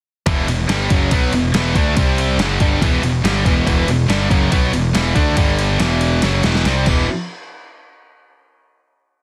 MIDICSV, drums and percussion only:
0, 0, Header, 1, 2, 480
1, 0, Start_track
1, 0, Key_signature, 1, "minor"
1, 0, Tempo, 426743
1, 300, Time_signature, 4, 2, 24, 8
1, 10379, End_track
2, 0, Start_track
2, 0, Title_t, "Drums"
2, 298, Note_on_c, 9, 51, 100
2, 301, Note_on_c, 9, 36, 111
2, 410, Note_off_c, 9, 51, 0
2, 413, Note_off_c, 9, 36, 0
2, 543, Note_on_c, 9, 51, 84
2, 656, Note_off_c, 9, 51, 0
2, 777, Note_on_c, 9, 51, 102
2, 784, Note_on_c, 9, 38, 101
2, 890, Note_off_c, 9, 51, 0
2, 897, Note_off_c, 9, 38, 0
2, 1016, Note_on_c, 9, 51, 85
2, 1019, Note_on_c, 9, 36, 113
2, 1128, Note_off_c, 9, 51, 0
2, 1132, Note_off_c, 9, 36, 0
2, 1251, Note_on_c, 9, 51, 124
2, 1256, Note_on_c, 9, 36, 115
2, 1364, Note_off_c, 9, 51, 0
2, 1368, Note_off_c, 9, 36, 0
2, 1492, Note_on_c, 9, 51, 78
2, 1604, Note_off_c, 9, 51, 0
2, 1732, Note_on_c, 9, 51, 105
2, 1739, Note_on_c, 9, 38, 118
2, 1845, Note_off_c, 9, 51, 0
2, 1852, Note_off_c, 9, 38, 0
2, 1973, Note_on_c, 9, 36, 108
2, 1974, Note_on_c, 9, 51, 77
2, 2086, Note_off_c, 9, 36, 0
2, 2087, Note_off_c, 9, 51, 0
2, 2212, Note_on_c, 9, 51, 112
2, 2213, Note_on_c, 9, 36, 113
2, 2324, Note_off_c, 9, 51, 0
2, 2326, Note_off_c, 9, 36, 0
2, 2455, Note_on_c, 9, 51, 87
2, 2567, Note_off_c, 9, 51, 0
2, 2690, Note_on_c, 9, 51, 98
2, 2697, Note_on_c, 9, 38, 108
2, 2803, Note_off_c, 9, 51, 0
2, 2809, Note_off_c, 9, 38, 0
2, 2927, Note_on_c, 9, 51, 73
2, 2929, Note_on_c, 9, 36, 112
2, 3039, Note_off_c, 9, 51, 0
2, 3041, Note_off_c, 9, 36, 0
2, 3170, Note_on_c, 9, 36, 121
2, 3175, Note_on_c, 9, 51, 108
2, 3282, Note_off_c, 9, 36, 0
2, 3287, Note_off_c, 9, 51, 0
2, 3411, Note_on_c, 9, 51, 75
2, 3524, Note_off_c, 9, 51, 0
2, 3654, Note_on_c, 9, 51, 107
2, 3661, Note_on_c, 9, 38, 112
2, 3766, Note_off_c, 9, 51, 0
2, 3773, Note_off_c, 9, 38, 0
2, 3886, Note_on_c, 9, 36, 109
2, 3892, Note_on_c, 9, 51, 77
2, 3998, Note_off_c, 9, 36, 0
2, 4005, Note_off_c, 9, 51, 0
2, 4124, Note_on_c, 9, 36, 110
2, 4130, Note_on_c, 9, 51, 104
2, 4237, Note_off_c, 9, 36, 0
2, 4243, Note_off_c, 9, 51, 0
2, 4366, Note_on_c, 9, 51, 84
2, 4478, Note_off_c, 9, 51, 0
2, 4607, Note_on_c, 9, 51, 98
2, 4614, Note_on_c, 9, 38, 109
2, 4720, Note_off_c, 9, 51, 0
2, 4727, Note_off_c, 9, 38, 0
2, 4844, Note_on_c, 9, 36, 118
2, 4849, Note_on_c, 9, 51, 78
2, 4956, Note_off_c, 9, 36, 0
2, 4961, Note_off_c, 9, 51, 0
2, 5082, Note_on_c, 9, 36, 124
2, 5084, Note_on_c, 9, 51, 114
2, 5195, Note_off_c, 9, 36, 0
2, 5196, Note_off_c, 9, 51, 0
2, 5325, Note_on_c, 9, 51, 83
2, 5438, Note_off_c, 9, 51, 0
2, 5564, Note_on_c, 9, 51, 112
2, 5570, Note_on_c, 9, 38, 117
2, 5676, Note_off_c, 9, 51, 0
2, 5683, Note_off_c, 9, 38, 0
2, 5799, Note_on_c, 9, 36, 102
2, 5800, Note_on_c, 9, 51, 82
2, 5911, Note_off_c, 9, 36, 0
2, 5913, Note_off_c, 9, 51, 0
2, 6038, Note_on_c, 9, 51, 117
2, 6039, Note_on_c, 9, 36, 117
2, 6151, Note_off_c, 9, 51, 0
2, 6152, Note_off_c, 9, 36, 0
2, 6283, Note_on_c, 9, 51, 83
2, 6395, Note_off_c, 9, 51, 0
2, 6519, Note_on_c, 9, 51, 103
2, 6526, Note_on_c, 9, 38, 107
2, 6632, Note_off_c, 9, 51, 0
2, 6638, Note_off_c, 9, 38, 0
2, 6758, Note_on_c, 9, 51, 77
2, 6871, Note_off_c, 9, 51, 0
2, 6997, Note_on_c, 9, 51, 111
2, 7004, Note_on_c, 9, 38, 69
2, 7110, Note_off_c, 9, 51, 0
2, 7116, Note_off_c, 9, 38, 0
2, 7236, Note_on_c, 9, 51, 67
2, 7243, Note_on_c, 9, 38, 80
2, 7348, Note_off_c, 9, 51, 0
2, 7355, Note_off_c, 9, 38, 0
2, 7368, Note_on_c, 9, 38, 74
2, 7480, Note_off_c, 9, 38, 0
2, 7483, Note_on_c, 9, 51, 93
2, 7490, Note_on_c, 9, 38, 85
2, 7595, Note_off_c, 9, 51, 0
2, 7602, Note_off_c, 9, 38, 0
2, 7718, Note_on_c, 9, 49, 90
2, 7726, Note_on_c, 9, 36, 111
2, 7830, Note_off_c, 9, 49, 0
2, 7838, Note_off_c, 9, 36, 0
2, 10379, End_track
0, 0, End_of_file